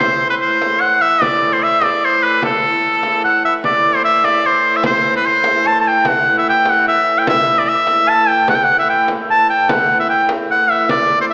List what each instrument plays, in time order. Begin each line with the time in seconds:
Already playing: hurdy-gurdy A2 E3
0.00 shawm C5, frame drum
0.30 shawm B4
0.41 shawm C5, frame drum
0.62 frame drum
0.80 shawm F#5, frame drum
1.02 shawm E5
1.22 shawm D5, frame drum
1.53 shawm C5
1.62 shawm E5, frame drum
1.82 shawm D5, frame drum
2.02 shawm C5, frame drum
2.24 shawm B4
2.42 shawm A4, frame drum
3.03 frame drum
3.24 shawm F#5, frame drum
3.43 shawm E5, frame drum
3.63 hurdy-gurdy A2 E3, shawm D5, frame drum
3.95 shawm C5
4.04 shawm E5, frame drum
4.24 shawm D5, frame drum
4.44 shawm C5, frame drum
4.76 shawm E5
4.84 shawm C5, frame drum
5.16 shawm B4
5.24 shawm C5, frame drum
5.44 frame drum
5.65 shawm A5, frame drum
5.80 shawm A5
5.88 shawm G5
6.05 shawm F#5, frame drum
6.38 shawm E5
6.46 shawm G5, frame drum
6.65 frame drum
6.70 shawm F#5
6.87 shawm E5, frame drum
7.18 shawm G5
7.27 shawm E5, frame drum
7.59 shawm D5
7.64 shawm D5
7.69 shawm E5
7.87 frame drum
8.09 shawm A5
8.28 shawm G5
8.47 hurdy-gurdy A2 E3, shawm F#5, frame drum
8.55 shawm G5
8.64 shawm F#5
8.79 shawm E5
8.88 shawm G5, frame drum
9.08 frame drum
9.29 shawm A5, frame drum
9.50 shawm G5
9.69 shawm F#5, frame drum
10.00 shawm E5
10.09 shawm G5, frame drum
10.29 frame drum
10.49 shawm F#5, frame drum
10.71 shawm E5
10.89 shawm D5, frame drum
11.21 shawm C5
11.29 shawm E5, frame drum